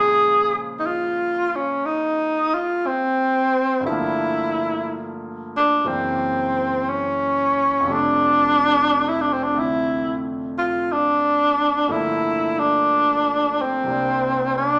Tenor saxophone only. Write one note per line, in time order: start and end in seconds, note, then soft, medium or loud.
0.00 0.64 G#4 medium
0.79 0.88 D#4 medium
0.86 1.57 F4 medium
1.56 1.87 C#4 medium
1.86 2.55 D#4 medium
2.54 2.88 F4 medium
2.87 3.86 C4 medium
3.86 5.13 E4 medium
5.57 5.89 D4 medium
5.88 6.90 C4 medium
6.89 7.94 C#4 medium
7.92 9.10 D4 medium
9.08 9.23 E4 medium
9.21 9.34 D4 medium
9.33 9.45 C4 medium
9.43 9.61 D4 medium
9.59 10.19 E4 medium
10.58 10.94 F4 medium
10.92 11.93 D4 medium
11.91 12.60 E4 medium
12.59 13.63 D4 medium
13.61 14.57 C4 medium
14.57 14.79 D4 medium